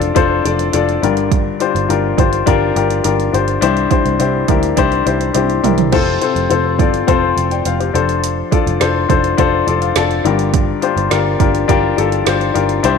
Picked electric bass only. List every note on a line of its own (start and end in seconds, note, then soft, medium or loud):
0.00 0.11 F1 medium
0.16 0.40 F1 medium
0.45 0.69 F1 medium
0.74 0.97 F1 medium
1.03 1.50 G1 medium
1.75 1.87 G1 medium
1.89 2.13 G1 medium
2.18 2.42 G1 medium
2.47 2.71 G1 medium
2.76 2.99 G1 medium
3.05 3.28 G1 medium
3.33 3.57 G1 medium
3.62 3.86 C2 medium
4.05 4.17 C2 medium
4.20 4.43 C2 medium
4.49 4.72 D2 medium
4.77 5.01 C2 medium
5.06 5.30 C2 medium
5.35 5.59 C2 medium
5.64 5.94 C2 medium
5.93 6.16 F1 medium
6.36 6.48 F1 medium
6.50 6.79 F1 medium
6.79 7.03 G1 medium
7.08 7.32 F1 medium
7.37 7.60 F1 medium
7.65 7.89 F1 medium
7.94 8.42 F1 medium
8.66 8.78 F1 medium
8.81 9.05 F1 medium
9.10 9.33 F1 medium
9.38 9.62 F1 medium
9.67 9.91 F1 medium
9.96 10.20 F1 medium
10.25 10.72 G1 medium
10.96 11.08 G1 medium
11.11 11.35 G1 medium
11.40 11.64 G1 medium
11.69 11.92 G1 medium
11.98 12.21 G1 medium
12.26 12.50 G1 medium
12.55 12.79 G1 medium
12.84 12.98 C2 medium